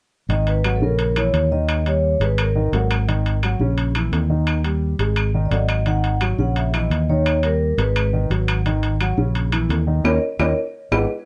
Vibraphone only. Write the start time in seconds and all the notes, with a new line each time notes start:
0.30 D#5
0.48 B4
0.76 A4
0.83 A#4
1.17 C#5
1.52 D#5
1.87 C#5
2.22 B4
2.39 A#4
5.46 D5
5.54 D#5
5.88 F#5
6.40 F#5
6.57 E5
6.75 D#5
7.10 C#5
7.44 A#4
7.79 B4
10.05 A#4 C#5 D#5
10.39 A#4 C#5 D#5
10.92 G#4 B4 D#5